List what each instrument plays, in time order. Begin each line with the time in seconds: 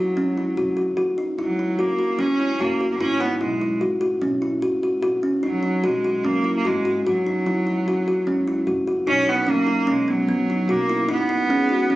Already playing: upright bass F#1, cello F#3, kalimba F#4
0.17 upright bass C#2, kalimba C#4
0.38 kalimba E4
0.57 upright bass F#1, kalimba F#4
0.77 kalimba F#4
0.97 upright bass F#1, kalimba F#4
1.18 kalimba D#4
1.38 upright bass C#2, cello F#3, kalimba E4
1.59 kalimba E4
1.78 upright bass F#1, cello A#3, kalimba F#4
1.99 kalimba F#4
2.18 upright bass C#2, kalimba C#4, cello C#4
2.40 kalimba E4
2.59 upright bass F#1, cello A#3, kalimba F#4
2.81 kalimba F#4
2.90 cello A#3
2.99 upright bass G#1, cello C#4, kalimba E4
3.20 cello B3, kalimba D#4
3.41 upright bass B1, cello G#3, kalimba E4
3.61 kalimba E4
3.81 upright bass G#1, kalimba F#4
4.01 kalimba F#4
4.21 upright bass B1, kalimba C#4
4.42 kalimba E4
4.62 upright bass G#1, kalimba F#4
4.83 kalimba F#4
5.03 upright bass B1, kalimba F#4
5.23 kalimba C#4
5.43 upright bass F#2, cello F#3, kalimba D#4
5.63 kalimba D#4
5.84 upright bass B1, cello G#3, kalimba F#4
6.04 kalimba F#4
6.23 upright bass F#2, cello A#3, kalimba C#4
6.44 kalimba E4
6.56 cello A#3
6.64 upright bass G#1, cello G#3, kalimba F#4
6.85 kalimba F#4
7.05 upright bass F#1, cello F#3, kalimba F#4
7.27 kalimba D#4
7.46 upright bass C#2, kalimba E4
7.67 kalimba E4
7.86 upright bass F#1, kalimba F#4
8.08 kalimba F#4
8.27 upright bass C#2, kalimba C#4
8.48 kalimba E4
8.67 upright bass F#1, kalimba F#4
8.87 kalimba F#4
9.07 upright bass B1, cello C#4, kalimba D#4
9.27 cello B3, kalimba D#4
9.47 upright bass F#2, cello A#3, kalimba C#4
9.67 kalimba D#4
9.87 upright bass B1, cello G#3, kalimba C#4
10.08 cello F#3, kalimba B3
10.27 upright bass F#2, kalimba B3
10.50 kalimba D#4
10.67 upright bass B1, cello A#3, kalimba F#4
10.89 kalimba E4
11.08 upright bass F#1, cello B3, kalimba D#4
11.29 kalimba D#4
11.49 upright bass C#2, kalimba C#4, vibraphone G#4
11.69 kalimba D#4, vibraphone F#4
11.90 upright bass F#1, kalimba C#4